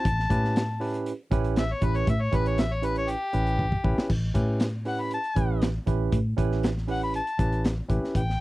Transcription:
0.00 1.03 A5 loud
0.05 0.25 A1 loud
0.05 kick loud
0.05 closed hi-hat medium
0.19 snare soft
0.30 1.12 A2 medium
0.30 0.61 C#4 medium
0.30 0.61 E4 medium
0.30 0.61 G4 medium
0.30 0.62 B4 loud
0.30 kick medium
0.30 closed hi-hat medium
0.44 snare soft
0.56 snare loud
0.56 closed hi-hat medium
0.80 1.12 C#4 medium
0.80 1.12 E4 medium
0.80 1.12 G4 medium
0.80 1.12 B4 medium
0.80 open hi-hat medium
0.94 closed hi-hat soft
1.06 closed hi-hat medium
1.31 1.72 A1 loud
1.31 1.62 C#4 loud
1.31 1.63 E4 medium
1.31 1.63 G4 medium
1.31 1.63 B4 loud
1.31 kick medium
1.31 closed hi-hat medium
1.44 closed hi-hat soft
1.56 1.74 E5 loud
1.56 snare loud
1.56 closed hi-hat medium
1.72 1.86 C#5 medium
1.81 2.02 A1 medium
1.81 2.13 C#4 medium
1.81 2.13 E4 medium
1.81 2.13 G4 medium
1.81 2.13 B4 medium
1.81 1.98 B4 loud
1.81 kick medium
1.81 closed hi-hat medium
1.95 2.07 C#5 loud
1.95 closed hi-hat soft
2.07 2.28 A2 loud
2.07 2.23 E5 medium
2.07 kick loud
2.07 closed hi-hat medium
2.22 2.37 C#5 loud
2.32 3.14 A1 medium
2.32 2.63 C#4 medium
2.32 2.63 E4 medium
2.32 2.64 G4 medium
2.32 2.64 B4 medium
2.32 2.49 B4 loud
2.32 kick medium
2.32 closed hi-hat medium
2.46 2.62 C#5 medium
2.46 closed hi-hat soft
2.58 2.75 E5 medium
2.58 snare loud
2.58 closed hi-hat medium
2.73 2.87 C#5 medium
2.82 3.14 C#4 medium
2.82 3.14 E4 medium
2.82 3.14 G4 medium
2.82 3.14 B4 medium
2.82 2.97 B4 medium
2.82 closed hi-hat medium
2.95 3.12 C#5 loud
2.95 closed hi-hat soft
3.08 4.08 G4 loud
3.08 closed hi-hat medium
3.33 3.75 A1 medium
3.33 3.65 C#4 medium
3.33 3.65 E4 medium
3.33 3.65 G4 medium
3.33 3.65 B4 medium
3.33 closed hi-hat medium
3.46 closed hi-hat soft
3.59 kick medium
3.72 kick medium
3.84 3.95 A1 loud
3.84 4.10 C#4 medium
3.84 4.10 E4 medium
3.84 4.10 G4 medium
3.84 4.10 B4 medium
3.84 kick medium
3.98 muted fingered electric bass stroke soft
3.98 snare medium
4.10 4.30 A1 medium
4.10 kick loud
4.10 crash loud
4.34 5.17 A2 medium
4.34 4.66 C#4 medium
4.34 4.66 E4 medium
4.34 4.66 G4 medium
4.34 4.67 B4 loud
4.34 kick medium
4.34 closed hi-hat medium
4.60 snare loud
4.60 closed hi-hat medium
4.85 5.17 C#4 medium
4.85 5.17 E4 medium
4.85 5.17 G4 medium
4.85 5.17 B4 medium
4.85 5.02 F#5 medium
4.85 open hi-hat medium
5.01 5.11 B5 medium
5.11 5.62 A5 loud
5.11 closed hi-hat medium
5.24 closed hi-hat soft
5.36 5.77 A1 medium
5.36 5.67 C#4 medium
5.36 5.67 E4 medium
5.36 5.68 G4 medium
5.36 5.68 B4 medium
5.36 kick medium
5.36 closed hi-hat medium
5.62 snare loud
5.62 closed hi-hat medium
5.86 6.08 A1 medium
5.86 6.18 C#4 medium
5.86 6.18 E4 medium
5.86 6.18 G4 medium
5.86 6.19 B4 medium
5.86 kick medium
5.86 closed hi-hat medium
6.12 6.33 A2 medium
6.12 kick loud
6.12 closed hi-hat medium
6.37 7.19 A1 medium
6.37 6.69 C#4 medium
6.37 6.69 E4 medium
6.37 6.69 G4 medium
6.37 6.69 B4 loud
6.37 kick medium
6.37 closed hi-hat medium
6.52 snare soft
6.63 snare loud
6.63 closed hi-hat medium
6.77 snare soft
6.88 7.19 C#4 medium
6.88 7.19 E4 medium
6.88 7.20 G4 medium
6.88 7.20 B4 medium
6.88 7.02 F#5 loud
6.88 open hi-hat medium
7.04 7.14 B5 medium
7.14 7.64 A5 loud
7.14 closed hi-hat medium
7.27 closed hi-hat soft
7.39 7.80 A1 medium
7.39 7.70 C#4 medium
7.39 7.70 E4 medium
7.39 7.71 G4 medium
7.39 7.71 B4 medium
7.39 kick medium
7.39 closed hi-hat medium
7.52 closed hi-hat soft
7.65 snare loud
7.65 closed hi-hat medium
7.89 8.00 A1 loud
7.89 8.20 C#4 medium
7.89 8.21 E4 medium
7.89 8.21 G4 medium
7.89 8.21 B4 medium
7.89 kick medium
7.89 closed hi-hat medium
8.04 snare soft
8.15 8.36 A1 medium
8.15 8.40 G5 loud
8.15 kick loud
8.15 closed hi-hat medium
8.30 snare soft

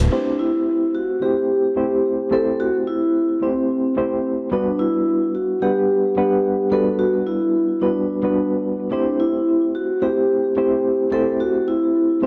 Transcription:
0.11 1.18 A3 medium
0.11 1.18 C4 medium
0.11 0.40 D4 medium
0.11 1.18 E4 medium
0.11 1.19 G4 medium
0.11 1.19 C5 medium
0.39 0.96 E4 medium
0.95 1.23 F#4 medium
1.21 1.73 A3 medium
1.21 1.73 C4 medium
1.21 1.73 E4 medium
1.21 1.74 G4 medium
1.21 2.35 G4 medium
1.21 1.74 C5 medium
1.76 2.28 A3 medium
1.76 2.28 C4 medium
1.76 2.29 E4 medium
1.76 2.29 G4 medium
1.76 2.29 C5 medium
2.31 3.38 A3 medium
2.31 3.38 C4 medium
2.31 3.39 E4 medium
2.31 3.39 G4 medium
2.31 2.60 A4 loud
2.31 3.39 C5 medium
2.60 2.72 F#4 medium
2.88 3.44 E4 medium
3.41 3.93 A3 medium
3.41 3.94 C4 medium
3.41 4.21 C4 medium
3.41 3.94 E4 medium
3.41 3.94 G4 medium
3.41 3.94 C5 medium
3.97 4.49 A3 medium
3.97 4.49 C4 medium
3.97 4.49 E4 medium
3.97 4.49 G4 medium
3.97 4.49 C5 medium
4.51 5.59 G3 medium
4.51 5.59 B3 medium
4.51 4.80 D4 medium
4.51 5.59 D4 medium
4.51 5.59 F#4 medium
4.51 5.59 B4 medium
4.79 5.31 E4 medium
5.35 5.63 F#4 medium
5.62 6.14 G3 medium
5.62 6.14 B3 medium
5.62 6.14 D4 medium
5.62 6.75 G4 medium
5.62 6.14 B4 medium
5.62 6.14 F#5 medium
6.17 6.69 G3 medium
6.17 6.69 B3 medium
6.17 6.69 D4 medium
6.17 6.69 B4 medium
6.17 6.69 F#5 medium
6.71 7.79 G3 medium
6.71 7.79 B3 medium
6.71 7.79 D4 medium
6.71 7.79 F#4 medium
6.71 7.00 A4 loud
6.71 7.80 B4 medium
6.99 7.28 F#4 medium
7.27 7.84 E4 medium
7.82 8.21 G3 medium
7.82 8.21 B3 medium
7.82 8.61 D4 medium
7.82 8.21 D4 medium
7.82 8.21 F#4 medium
7.82 8.21 B4 medium
8.22 8.88 G3 medium
8.22 8.89 B3 medium
8.22 8.89 D4 medium
8.22 8.89 F#4 medium
8.22 8.89 B4 medium
8.91 9.98 A3 medium
8.91 9.99 C4 medium
8.91 9.20 D4 medium
8.91 9.99 E4 medium
8.91 9.99 G4 medium
8.91 9.99 C5 medium
9.20 9.71 E4 medium
9.75 10.03 F#4 medium
10.02 10.54 A3 medium
10.02 10.54 C4 medium
10.02 10.54 E4 medium
10.02 11.16 G4 medium
10.02 10.54 G4 medium
10.02 10.54 C5 medium
10.57 11.09 A3 medium
10.57 11.09 C4 medium
10.57 11.09 E4 medium
10.57 11.09 G4 medium
10.57 11.09 C5 medium
11.12 12.19 A3 medium
11.12 12.19 C4 medium
11.12 12.19 E4 medium
11.12 12.20 G4 medium
11.12 11.41 A4 loud
11.12 12.20 C5 medium
11.40 11.66 F#4 medium
11.68 12.24 E4 medium
12.22 12.27 A3 medium
12.22 12.27 C4 medium
12.22 12.27 E4 medium
12.22 12.27 G4 medium
12.22 12.27 C5 medium

